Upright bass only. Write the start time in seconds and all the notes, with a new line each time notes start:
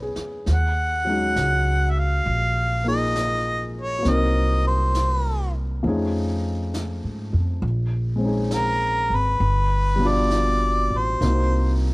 Already playing: B1
0.16 muted upright bass stroke
0.47 D#2
1.36 C#2
2.26 A#1
4.05 C2
5.84 F2
7.04 G#2
7.33 F2
7.62 A#1
9.10 G#1
9.40 G1
10.91 A1
11.21 C2